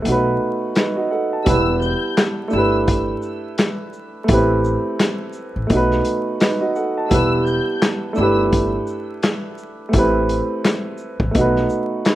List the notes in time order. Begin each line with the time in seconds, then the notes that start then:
0.02 B1 A3 B3, closed hi-hat
0.07 D#4 F#4
0.12 B4
0.75 D#4 B4, snare, clap, closed hi-hat
0.96 F#4 D#5
1.11 A4 F#5
1.33 A5
1.44 E1 G3 B3 E4 G4 E6, kick, closed hi-hat
1.49 B4
1.82 G6, shaker
2.17 snare, clap, closed hi-hat
2.48 A3 D4, shaker
2.53 G1 E4 G4 E6
2.58 B4
2.88 kick, closed hi-hat
3.22 shaker
3.58 snare, clap, closed hi-hat
3.93 shaker
4.24 A3 B3
4.28 A1 E4 G4, kick, closed hi-hat
4.33 C4 B4
4.64 shaker
5.00 snare, clap, closed hi-hat
5.33 shaker
5.56 A1
5.67 B1 A3 B3, kick, closed hi-hat
5.72 D#4 F#4
5.76 B4
5.91 snare
6.05 closed hi-hat, shaker
6.40 D#4 B4, snare, clap, closed hi-hat
6.61 F#4 D#5
6.76 A4 F#5, shaker
6.97 A5
7.09 E1 G3 B3 E4 G4 E6, kick, closed hi-hat
7.14 B4
7.47 G6, shaker
7.82 snare, clap, closed hi-hat
8.13 A3 D4 E6, shaker
8.18 G1 E4 G4
8.23 B4
8.52 kick, closed hi-hat
8.87 shaker
9.23 snare, clap, closed hi-hat
9.58 shaker
9.89 A3 B3
9.93 A1 E4 G4, kick, closed hi-hat
9.98 C4 B4
10.29 closed hi-hat, shaker
10.65 snare, clap, closed hi-hat
10.98 shaker
11.20 A1, kick
11.31 A3 B3, kick, closed hi-hat
11.35 B1 D#4 F#4
11.41 B4
11.56 snare
11.70 shaker
12.05 D#4 B4, snare, clap, closed hi-hat